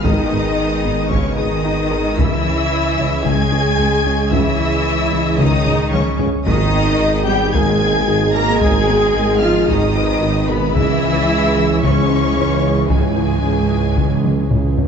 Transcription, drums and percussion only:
0.05 taiko
1.11 taiko
2.19 taiko
3.26 taiko
4.33 taiko
5.39 taiko
5.66 taiko low-mid
5.93 taiko mid
6.20 taiko low
6.46 taiko
7.54 taiko
8.61 taiko
9.69 taiko
10.75 taiko
11.83 taiko
12.90 taiko
13.97 taiko
14.24 taiko mid
14.51 taiko low-mid
14.77 taiko low

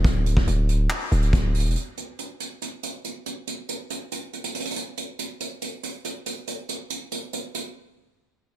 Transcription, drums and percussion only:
0.04 kick, closed hi-hat
0.26 closed hi-hat
0.37 kick
0.47 closed hi-hat
0.69 closed hi-hat
0.90 clap, closed hi-hat
1.12 closed hi-hat
1.22 closed hi-hat
1.33 kick, closed hi-hat
1.54 closed hi-hat, open hi-hat
1.60 closed hi-hat
1.65 closed hi-hat
1.70 closed hi-hat
1.76 closed hi-hat
1.97 closed hi-hat
2.19 closed hi-hat
2.40 closed hi-hat
2.62 closed hi-hat
2.83 closed hi-hat
3.04 closed hi-hat
3.26 closed hi-hat
3.47 closed hi-hat
3.69 closed hi-hat
3.90 closed hi-hat
4.12 closed hi-hat
4.33 closed hi-hat
4.44 closed hi-hat
4.54 closed hi-hat
4.60 closed hi-hat
4.65 closed hi-hat
4.71 closed hi-hat
4.76 closed hi-hat
4.97 closed hi-hat
5.19 closed hi-hat
5.40 closed hi-hat
5.62 closed hi-hat
5.83 closed hi-hat
6.05 closed hi-hat
6.26 closed hi-hat
6.47 closed hi-hat
6.69 closed hi-hat
6.90 closed hi-hat
7.12 closed hi-hat
7.33 closed hi-hat
7.55 closed hi-hat

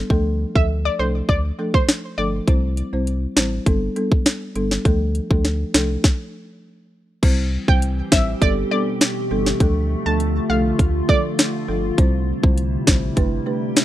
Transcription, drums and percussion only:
0.10 kick
0.55 kick
1.29 kick
1.74 kick
1.89 snare
2.48 kick, closed hi-hat
2.77 closed hi-hat
3.07 closed hi-hat
3.37 snare, closed hi-hat
3.66 kick, closed hi-hat
3.96 closed hi-hat
4.12 kick
4.26 snare, closed hi-hat
4.56 closed hi-hat
4.71 snare
4.85 kick, closed hi-hat
5.15 closed hi-hat
5.31 kick
5.45 snare, closed hi-hat
5.74 snare, closed hi-hat
6.04 kick, snare
7.23 kick, closed hi-hat, crash
7.68 kick
7.82 closed hi-hat
8.12 kick, snare
8.42 kick, closed hi-hat
9.01 snare, closed hi-hat
9.46 snare
9.60 kick, closed hi-hat
10.20 closed hi-hat
10.79 kick, closed hi-hat
11.09 kick
11.39 snare, closed hi-hat
11.98 kick, closed hi-hat
12.44 kick
12.58 closed hi-hat
12.87 kick, snare
13.17 kick, closed hi-hat
13.76 snare, closed hi-hat

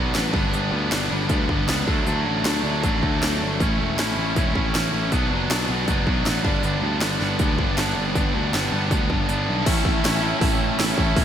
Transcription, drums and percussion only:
0.14 snare, open hi-hat
0.34 kick
0.53 open hi-hat
0.91 snare, open hi-hat
1.29 kick, open hi-hat
1.49 kick
1.68 snare, open hi-hat
1.88 kick
2.07 open hi-hat
2.45 snare, open hi-hat
2.83 kick, open hi-hat
3.03 kick
3.22 snare, open hi-hat
3.60 kick, open hi-hat
3.98 snare, open hi-hat
4.36 kick, open hi-hat
4.55 kick
4.74 snare, open hi-hat
5.12 kick, open hi-hat
5.50 snare, open hi-hat
5.88 kick, open hi-hat
6.07 kick
6.26 snare, open hi-hat
6.45 kick
6.63 open hi-hat
7.01 snare, open hi-hat
7.21 snare
7.39 kick, open hi-hat
7.59 kick
7.77 snare, open hi-hat
8.15 kick, open hi-hat
8.54 snare, open hi-hat
8.91 kick, open hi-hat
9.10 kick
9.29 open hi-hat
9.66 kick, open hi-hat, crash
9.85 kick
10.04 snare, open hi-hat
10.41 kick, open hi-hat
10.79 snare, open hi-hat
10.98 kick
11.16 kick, open hi-hat

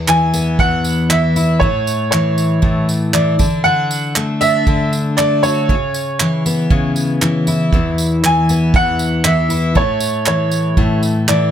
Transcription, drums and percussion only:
0.08 clap
0.34 tambourine
0.59 kick
0.84 tambourine
1.10 clap
1.36 tambourine
1.61 kick
1.87 tambourine
2.13 clap
2.38 tambourine
2.63 kick
2.89 tambourine
3.14 clap
3.39 kick, tambourine
3.91 tambourine
4.16 clap
4.41 tambourine
4.67 kick
4.93 tambourine
5.18 clap
5.44 tambourine
5.69 kick
5.94 tambourine
6.20 clap
6.46 tambourine
6.70 kick
6.96 tambourine
7.22 clap
7.47 tambourine
7.73 kick
7.98 tambourine
8.24 clap
8.49 tambourine
8.74 kick
8.99 tambourine
9.25 clap
9.50 tambourine
9.76 kick
10.00 tambourine
10.26 clap
10.51 tambourine
10.77 kick
11.03 tambourine
11.28 clap

